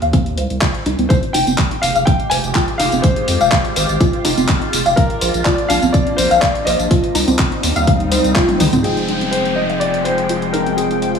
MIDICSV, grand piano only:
0, 0, Header, 1, 2, 480
1, 0, Start_track
1, 0, Tempo, 483871
1, 1093, Time_signature, 4, 2, 24, 8
1, 11102, End_track
2, 0, Start_track
2, 0, Title_t, "Grand piano"
2, 0, Program_c, 0, 0
2, 1080, Note_on_c, 0, 72, 91
2, 1135, Note_off_c, 0, 72, 0
2, 1321, Note_on_c, 0, 79, 96
2, 1801, Note_on_c, 0, 77, 94
2, 1822, Note_off_c, 0, 79, 0
2, 2039, Note_on_c, 0, 79, 107
2, 2055, Note_off_c, 0, 77, 0
2, 2269, Note_off_c, 0, 79, 0
2, 2279, Note_on_c, 0, 80, 105
2, 2334, Note_off_c, 0, 80, 0
2, 2517, Note_on_c, 0, 79, 101
2, 2572, Note_off_c, 0, 79, 0
2, 2757, Note_on_c, 0, 77, 98
2, 2997, Note_on_c, 0, 72, 86
2, 3012, Note_off_c, 0, 77, 0
2, 4406, Note_off_c, 0, 72, 0
2, 4922, Note_on_c, 0, 70, 95
2, 5402, Note_on_c, 0, 74, 99
2, 5422, Note_off_c, 0, 70, 0
2, 5640, Note_on_c, 0, 77, 105
2, 5655, Note_off_c, 0, 74, 0
2, 5869, Note_off_c, 0, 77, 0
2, 5879, Note_on_c, 0, 74, 106
2, 6117, Note_on_c, 0, 72, 95
2, 6133, Note_off_c, 0, 74, 0
2, 6355, Note_on_c, 0, 74, 96
2, 6372, Note_off_c, 0, 72, 0
2, 6597, Note_on_c, 0, 75, 96
2, 6611, Note_off_c, 0, 74, 0
2, 8246, Note_off_c, 0, 75, 0
2, 8760, Note_on_c, 0, 68, 85
2, 9239, Note_on_c, 0, 72, 89
2, 9261, Note_off_c, 0, 68, 0
2, 9481, Note_on_c, 0, 75, 93
2, 9493, Note_off_c, 0, 72, 0
2, 9722, Note_on_c, 0, 74, 101
2, 9734, Note_off_c, 0, 75, 0
2, 9964, Note_on_c, 0, 72, 93
2, 9975, Note_off_c, 0, 74, 0
2, 10444, Note_on_c, 0, 70, 85
2, 10463, Note_off_c, 0, 72, 0
2, 10671, Note_off_c, 0, 70, 0
2, 10683, Note_on_c, 0, 68, 75
2, 11102, Note_off_c, 0, 68, 0
2, 11102, End_track
0, 0, End_of_file